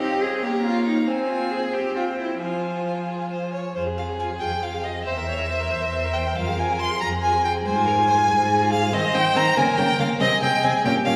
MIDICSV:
0, 0, Header, 1, 5, 480
1, 0, Start_track
1, 0, Key_signature, -4, "minor"
1, 0, Tempo, 429799
1, 1197, Time_signature, 6, 3, 24, 8
1, 1682, Tempo, 447427
1, 5042, Tempo, 428266
1, 12351, End_track
2, 0, Start_track
2, 0, Title_t, "Violin"
2, 0, Program_c, 0, 40
2, 0, Note_on_c, 0, 75, 61
2, 480, Note_on_c, 0, 73, 59
2, 496, Note_off_c, 0, 75, 0
2, 1181, Note_off_c, 0, 73, 0
2, 1188, Note_on_c, 0, 72, 60
2, 1901, Note_off_c, 0, 72, 0
2, 1917, Note_on_c, 0, 72, 55
2, 2629, Note_off_c, 0, 72, 0
2, 2638, Note_on_c, 0, 72, 51
2, 3311, Note_off_c, 0, 72, 0
2, 3361, Note_on_c, 0, 68, 58
2, 3595, Note_off_c, 0, 68, 0
2, 3613, Note_on_c, 0, 72, 61
2, 3838, Note_off_c, 0, 72, 0
2, 3844, Note_on_c, 0, 73, 58
2, 4086, Note_off_c, 0, 73, 0
2, 4092, Note_on_c, 0, 72, 77
2, 4178, Note_off_c, 0, 72, 0
2, 4334, Note_on_c, 0, 77, 69
2, 4419, Note_off_c, 0, 77, 0
2, 4565, Note_on_c, 0, 80, 78
2, 4651, Note_off_c, 0, 80, 0
2, 4779, Note_on_c, 0, 79, 89
2, 5031, Note_on_c, 0, 77, 82
2, 5047, Note_off_c, 0, 79, 0
2, 5269, Note_on_c, 0, 75, 76
2, 5285, Note_off_c, 0, 77, 0
2, 5490, Note_off_c, 0, 75, 0
2, 5497, Note_on_c, 0, 76, 95
2, 6716, Note_on_c, 0, 79, 82
2, 6733, Note_off_c, 0, 76, 0
2, 6971, Note_on_c, 0, 77, 96
2, 6988, Note_off_c, 0, 79, 0
2, 7229, Note_on_c, 0, 80, 90
2, 7246, Note_off_c, 0, 77, 0
2, 7464, Note_on_c, 0, 84, 101
2, 7481, Note_off_c, 0, 80, 0
2, 7685, Note_off_c, 0, 84, 0
2, 7692, Note_on_c, 0, 82, 110
2, 7781, Note_off_c, 0, 82, 0
2, 7933, Note_on_c, 0, 80, 99
2, 8172, Note_off_c, 0, 80, 0
2, 8191, Note_on_c, 0, 79, 97
2, 8281, Note_off_c, 0, 79, 0
2, 8425, Note_on_c, 0, 80, 118
2, 9594, Note_off_c, 0, 80, 0
2, 9618, Note_on_c, 0, 77, 101
2, 9856, Note_on_c, 0, 75, 112
2, 9873, Note_off_c, 0, 77, 0
2, 10093, Note_on_c, 0, 79, 115
2, 10110, Note_off_c, 0, 75, 0
2, 10336, Note_on_c, 0, 82, 120
2, 10353, Note_off_c, 0, 79, 0
2, 10574, Note_on_c, 0, 80, 103
2, 10591, Note_off_c, 0, 82, 0
2, 10802, Note_on_c, 0, 79, 117
2, 10819, Note_off_c, 0, 80, 0
2, 11041, Note_off_c, 0, 79, 0
2, 11051, Note_on_c, 0, 77, 99
2, 11141, Note_off_c, 0, 77, 0
2, 11274, Note_on_c, 0, 75, 127
2, 11513, Note_off_c, 0, 75, 0
2, 11528, Note_on_c, 0, 79, 112
2, 11761, Note_on_c, 0, 80, 101
2, 11778, Note_off_c, 0, 79, 0
2, 11998, Note_off_c, 0, 80, 0
2, 12005, Note_on_c, 0, 79, 114
2, 12095, Note_off_c, 0, 79, 0
2, 12229, Note_on_c, 0, 77, 119
2, 12351, Note_off_c, 0, 77, 0
2, 12351, End_track
3, 0, Start_track
3, 0, Title_t, "Violin"
3, 0, Program_c, 1, 40
3, 0, Note_on_c, 1, 77, 60
3, 494, Note_on_c, 1, 82, 58
3, 511, Note_off_c, 1, 77, 0
3, 1202, Note_on_c, 1, 80, 63
3, 1219, Note_off_c, 1, 82, 0
3, 1922, Note_on_c, 1, 79, 51
3, 1938, Note_off_c, 1, 80, 0
3, 2635, Note_off_c, 1, 79, 0
3, 2641, Note_on_c, 1, 80, 49
3, 3858, Note_off_c, 1, 80, 0
3, 4097, Note_on_c, 1, 68, 82
3, 5476, Note_off_c, 1, 68, 0
3, 5521, Note_on_c, 1, 72, 82
3, 5611, Note_off_c, 1, 72, 0
3, 5759, Note_on_c, 1, 73, 66
3, 5997, Note_off_c, 1, 73, 0
3, 6003, Note_on_c, 1, 72, 62
3, 6959, Note_off_c, 1, 72, 0
3, 6971, Note_on_c, 1, 70, 77
3, 7684, Note_off_c, 1, 70, 0
3, 7689, Note_on_c, 1, 68, 73
3, 8417, Note_on_c, 1, 72, 88
3, 8434, Note_off_c, 1, 68, 0
3, 8650, Note_off_c, 1, 72, 0
3, 8657, Note_on_c, 1, 70, 75
3, 8746, Note_off_c, 1, 70, 0
3, 8895, Note_on_c, 1, 72, 77
3, 8985, Note_off_c, 1, 72, 0
3, 9135, Note_on_c, 1, 68, 83
3, 9845, Note_on_c, 1, 72, 100
3, 9862, Note_off_c, 1, 68, 0
3, 10562, Note_on_c, 1, 70, 93
3, 10579, Note_off_c, 1, 72, 0
3, 11274, Note_off_c, 1, 70, 0
3, 11280, Note_on_c, 1, 68, 105
3, 12008, Note_on_c, 1, 67, 93
3, 12024, Note_off_c, 1, 68, 0
3, 12351, Note_off_c, 1, 67, 0
3, 12351, End_track
4, 0, Start_track
4, 0, Title_t, "Viola"
4, 0, Program_c, 2, 41
4, 0, Note_on_c, 2, 60, 65
4, 480, Note_on_c, 2, 58, 69
4, 497, Note_off_c, 2, 60, 0
4, 1199, Note_on_c, 2, 60, 67
4, 1215, Note_off_c, 2, 58, 0
4, 1911, Note_off_c, 2, 60, 0
4, 1917, Note_on_c, 2, 60, 55
4, 2629, Note_off_c, 2, 60, 0
4, 2638, Note_on_c, 2, 53, 55
4, 3856, Note_off_c, 2, 53, 0
4, 4091, Note_on_c, 2, 65, 49
4, 4217, Note_on_c, 2, 68, 45
4, 4234, Note_off_c, 2, 65, 0
4, 4334, Note_on_c, 2, 65, 46
4, 4350, Note_off_c, 2, 68, 0
4, 4452, Note_on_c, 2, 68, 44
4, 4468, Note_off_c, 2, 65, 0
4, 4561, Note_off_c, 2, 68, 0
4, 4567, Note_on_c, 2, 65, 55
4, 4683, Note_on_c, 2, 68, 47
4, 4699, Note_off_c, 2, 65, 0
4, 4799, Note_on_c, 2, 65, 50
4, 4815, Note_off_c, 2, 68, 0
4, 4914, Note_on_c, 2, 68, 52
4, 4930, Note_off_c, 2, 65, 0
4, 5021, Note_off_c, 2, 68, 0
4, 5027, Note_on_c, 2, 65, 52
4, 5156, Note_on_c, 2, 68, 49
4, 5172, Note_off_c, 2, 65, 0
4, 5271, Note_on_c, 2, 65, 50
4, 5288, Note_off_c, 2, 68, 0
4, 5397, Note_on_c, 2, 68, 48
4, 5414, Note_off_c, 2, 65, 0
4, 5513, Note_off_c, 2, 68, 0
4, 5520, Note_on_c, 2, 72, 50
4, 5643, Note_on_c, 2, 70, 48
4, 5660, Note_off_c, 2, 72, 0
4, 5750, Note_on_c, 2, 72, 51
4, 5767, Note_off_c, 2, 70, 0
4, 5878, Note_on_c, 2, 70, 50
4, 5895, Note_off_c, 2, 72, 0
4, 5996, Note_off_c, 2, 70, 0
4, 6003, Note_on_c, 2, 72, 50
4, 6127, Note_on_c, 2, 70, 50
4, 6143, Note_off_c, 2, 72, 0
4, 6246, Note_on_c, 2, 72, 54
4, 6262, Note_off_c, 2, 70, 0
4, 6363, Note_on_c, 2, 70, 47
4, 6379, Note_off_c, 2, 72, 0
4, 6490, Note_off_c, 2, 70, 0
4, 6497, Note_on_c, 2, 72, 51
4, 6622, Note_on_c, 2, 70, 54
4, 6639, Note_off_c, 2, 72, 0
4, 6742, Note_on_c, 2, 72, 50
4, 6759, Note_off_c, 2, 70, 0
4, 6868, Note_on_c, 2, 70, 46
4, 6885, Note_off_c, 2, 72, 0
4, 6983, Note_off_c, 2, 70, 0
4, 6989, Note_on_c, 2, 65, 57
4, 7105, Note_on_c, 2, 68, 51
4, 7122, Note_off_c, 2, 65, 0
4, 7227, Note_on_c, 2, 65, 57
4, 7243, Note_off_c, 2, 68, 0
4, 7344, Note_on_c, 2, 68, 50
4, 7361, Note_off_c, 2, 65, 0
4, 7459, Note_off_c, 2, 68, 0
4, 7466, Note_on_c, 2, 65, 60
4, 7585, Note_on_c, 2, 68, 53
4, 7602, Note_off_c, 2, 65, 0
4, 7711, Note_on_c, 2, 65, 58
4, 7728, Note_off_c, 2, 68, 0
4, 7828, Note_on_c, 2, 68, 59
4, 7845, Note_off_c, 2, 65, 0
4, 7938, Note_off_c, 2, 68, 0
4, 7945, Note_on_c, 2, 65, 58
4, 8059, Note_on_c, 2, 68, 58
4, 8075, Note_off_c, 2, 65, 0
4, 8186, Note_on_c, 2, 65, 54
4, 8203, Note_off_c, 2, 68, 0
4, 8307, Note_on_c, 2, 68, 51
4, 8324, Note_off_c, 2, 65, 0
4, 8424, Note_off_c, 2, 68, 0
4, 8430, Note_on_c, 2, 68, 64
4, 8544, Note_on_c, 2, 65, 56
4, 8561, Note_off_c, 2, 68, 0
4, 8668, Note_on_c, 2, 68, 63
4, 8684, Note_off_c, 2, 65, 0
4, 8785, Note_on_c, 2, 65, 61
4, 8801, Note_off_c, 2, 68, 0
4, 8895, Note_off_c, 2, 65, 0
4, 8902, Note_on_c, 2, 68, 59
4, 9011, Note_on_c, 2, 65, 56
4, 9028, Note_off_c, 2, 68, 0
4, 9136, Note_on_c, 2, 68, 69
4, 9153, Note_off_c, 2, 65, 0
4, 9245, Note_on_c, 2, 65, 58
4, 9262, Note_off_c, 2, 68, 0
4, 9362, Note_off_c, 2, 65, 0
4, 9369, Note_on_c, 2, 68, 63
4, 9500, Note_on_c, 2, 65, 65
4, 9517, Note_off_c, 2, 68, 0
4, 9612, Note_on_c, 2, 68, 64
4, 9629, Note_off_c, 2, 65, 0
4, 9729, Note_on_c, 2, 65, 62
4, 9746, Note_off_c, 2, 68, 0
4, 9845, Note_off_c, 2, 65, 0
4, 9852, Note_on_c, 2, 60, 71
4, 9941, Note_off_c, 2, 60, 0
4, 10088, Note_on_c, 2, 60, 65
4, 10178, Note_off_c, 2, 60, 0
4, 10325, Note_on_c, 2, 60, 81
4, 10415, Note_off_c, 2, 60, 0
4, 10562, Note_on_c, 2, 58, 65
4, 10652, Note_off_c, 2, 58, 0
4, 10806, Note_on_c, 2, 58, 65
4, 10895, Note_off_c, 2, 58, 0
4, 11048, Note_on_c, 2, 58, 74
4, 11137, Note_off_c, 2, 58, 0
4, 11287, Note_on_c, 2, 60, 79
4, 11376, Note_off_c, 2, 60, 0
4, 11528, Note_on_c, 2, 60, 69
4, 11618, Note_off_c, 2, 60, 0
4, 11761, Note_on_c, 2, 60, 77
4, 11850, Note_off_c, 2, 60, 0
4, 12010, Note_on_c, 2, 61, 77
4, 12100, Note_off_c, 2, 61, 0
4, 12233, Note_on_c, 2, 61, 76
4, 12323, Note_off_c, 2, 61, 0
4, 12351, End_track
5, 0, Start_track
5, 0, Title_t, "Cello"
5, 0, Program_c, 3, 42
5, 11, Note_on_c, 3, 67, 87
5, 253, Note_on_c, 3, 68, 75
5, 270, Note_off_c, 3, 67, 0
5, 488, Note_on_c, 3, 67, 86
5, 505, Note_off_c, 3, 68, 0
5, 722, Note_off_c, 3, 67, 0
5, 727, Note_on_c, 3, 65, 88
5, 948, Note_off_c, 3, 65, 0
5, 954, Note_on_c, 3, 63, 75
5, 1191, Note_off_c, 3, 63, 0
5, 1197, Note_on_c, 3, 60, 70
5, 1435, Note_on_c, 3, 65, 68
5, 1452, Note_off_c, 3, 60, 0
5, 1684, Note_on_c, 3, 68, 72
5, 1700, Note_off_c, 3, 65, 0
5, 1924, Note_on_c, 3, 67, 76
5, 1940, Note_off_c, 3, 68, 0
5, 2157, Note_off_c, 3, 67, 0
5, 2163, Note_on_c, 3, 65, 79
5, 2249, Note_off_c, 3, 65, 0
5, 2399, Note_on_c, 3, 64, 66
5, 2639, Note_off_c, 3, 64, 0
5, 2647, Note_on_c, 3, 65, 62
5, 3841, Note_off_c, 3, 65, 0
5, 4095, Note_on_c, 3, 41, 63
5, 4722, Note_off_c, 3, 41, 0
5, 4807, Note_on_c, 3, 41, 58
5, 5438, Note_off_c, 3, 41, 0
5, 5521, Note_on_c, 3, 40, 60
5, 6165, Note_off_c, 3, 40, 0
5, 6254, Note_on_c, 3, 40, 65
5, 6896, Note_off_c, 3, 40, 0
5, 6981, Note_on_c, 3, 41, 69
5, 7619, Note_off_c, 3, 41, 0
5, 7709, Note_on_c, 3, 41, 70
5, 8340, Note_off_c, 3, 41, 0
5, 8422, Note_on_c, 3, 44, 70
5, 9055, Note_off_c, 3, 44, 0
5, 9142, Note_on_c, 3, 44, 82
5, 9771, Note_off_c, 3, 44, 0
5, 9851, Note_on_c, 3, 51, 77
5, 9940, Note_off_c, 3, 51, 0
5, 10080, Note_on_c, 3, 51, 70
5, 10170, Note_off_c, 3, 51, 0
5, 10319, Note_on_c, 3, 51, 89
5, 10409, Note_off_c, 3, 51, 0
5, 10561, Note_on_c, 3, 49, 82
5, 10651, Note_off_c, 3, 49, 0
5, 10802, Note_on_c, 3, 49, 89
5, 10891, Note_off_c, 3, 49, 0
5, 11030, Note_on_c, 3, 49, 76
5, 11120, Note_off_c, 3, 49, 0
5, 11272, Note_on_c, 3, 48, 89
5, 11362, Note_off_c, 3, 48, 0
5, 11519, Note_on_c, 3, 48, 74
5, 11609, Note_off_c, 3, 48, 0
5, 11757, Note_on_c, 3, 48, 79
5, 11846, Note_off_c, 3, 48, 0
5, 11997, Note_on_c, 3, 46, 84
5, 12087, Note_off_c, 3, 46, 0
5, 12240, Note_on_c, 3, 46, 92
5, 12330, Note_off_c, 3, 46, 0
5, 12351, End_track
0, 0, End_of_file